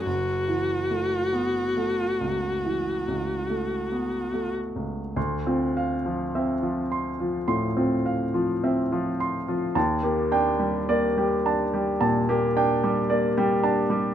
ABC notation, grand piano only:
X:1
M:4/4
L:1/16
Q:1/4=52
K:F#m
V:1 name="Grand piano"
z16 | [K:Dm] c' F f F e F c' F c' F f F e F c' F | a G g G d G a G a G g G d G a G |]
V:2 name="Grand piano" clef=bass
(3F,,,2 E,2 A,2 (3B,2 A,2 C,,2 (3E,2 C,,2 A,2 (3B,2 A,2 C,,2 | [K:Dm] D,, C2 F, C F,2 F, A,, C2 F, C F,2 F, | _E,, B, D G, B, G, D G, B,, B, D G, B, G, D G, |]